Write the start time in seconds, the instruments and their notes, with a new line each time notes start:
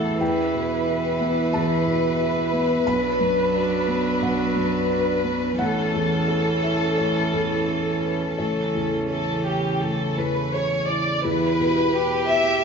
Already playing: felt piano A1 E2 A3 E4 E5 F#5 G5, cello E3, analog synth pad C#4 E4 A4, viola E4, violin section A4
0.21 felt piano E2 G5, analog synth pad B3 B4, violin section B4
0.54 felt piano B2
0.88 felt piano E4 E5
1.21 felt piano B3
1.53 felt piano E2 A5
1.86 felt piano B2
2.20 felt piano E4 E5
2.53 felt piano B3
2.87 felt piano B1 B5, cello F#3, viola D4, analog synth pad D4 F#4
3.20 felt piano F#2
3.54 felt piano F#4 D5
3.88 felt piano B3
4.22 felt piano B1 F#5
4.56 felt piano F#2
4.89 felt piano F#4 D5
5.24 felt piano B3
5.58 felt piano A1 F#5, cello E3, analog synth pad C#4 E4 A4, viola C#4, violin section A4
5.94 felt piano E2
6.28 felt piano A4 C#5
6.63 felt piano E4 E5
6.98 felt piano A1 C#5
7.33 felt piano E2
7.67 felt piano A4 C#5
8.03 felt piano E4 B4
8.37 felt piano A1 C#5, analog synth pad C#3 E4 A4, cello E3, viola C#4, violin section A4
8.75 felt piano E2
9.10 felt piano A4 C#5, violin section A4
9.46 felt piano E4, violin section G4
9.82 felt piano A1, violin section A4
10.18 felt piano E2, violin section B4
10.53 felt piano A4 C#5, violin section C#5
10.89 felt piano E4, violin section D5
11.24 felt piano E2 B4, analog synth pad B3 E4 G4, cello E4, viola G4, violin section B4
11.60 felt piano B2
11.94 cello G4, felt piano G4 B4
12.29 felt piano E4 E5, violin section E5